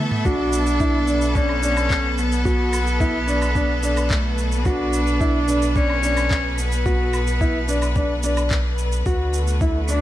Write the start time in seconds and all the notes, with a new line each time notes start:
Already playing: E3 A3 B3 A4 E5
0.11 mid tom
0.25 B1 B2 D4 F#4, kick, shaker
0.53 shaker
0.67 shaker
0.80 E4, kick, shaker
1.08 D4, shaker
1.18 B4, shaker
1.35 C#4 D4, kick, shaker
1.49 low woodblock
1.63 D4, shaker
1.77 low woodblock, shaker
1.90 kick, clap, shaker
2.18 B3, shaker
2.32 shaker
2.45 F#4, kick, shaker
2.73 low woodblock, shaker
2.87 shaker
3.00 E4, kick, shaker
3.28 D4, shaker
3.42 low woodblock, shaker
3.55 D4, kick, shaker
3.83 D4, shaker
3.97 low woodblock, shaker
4.11 A3, kick, clap, shaker
4.38 shaker
4.52 shaker
4.66 D4 F#4, kick, shaker
4.93 shaker
5.07 shaker
5.21 E4, kick, shaker
5.48 D4, shaker
5.62 shaker
5.76 C#4 D4, kick, shaker
5.90 low woodblock
6.03 D4, shaker
6.17 low woodblock, shaker
6.31 kick, clap, shaker
6.58 B3, shaker
6.72 shaker
6.86 F#4, kick, shaker
7.14 low woodblock, shaker
7.27 shaker
7.41 E4, kick, shaker
7.68 D4, shaker
7.82 low woodblock, shaker
7.96 D4, kick, shaker
8.23 D4, shaker
8.37 low woodblock, shaker
8.51 kick, clap, shaker
8.78 shaker
8.92 shaker
9.06 D2 D3 F#4, kick, shaker
9.34 F#4, shaker
9.41 A3
9.47 shaker
9.61 E4, kick, shaker
9.88 D4, shaker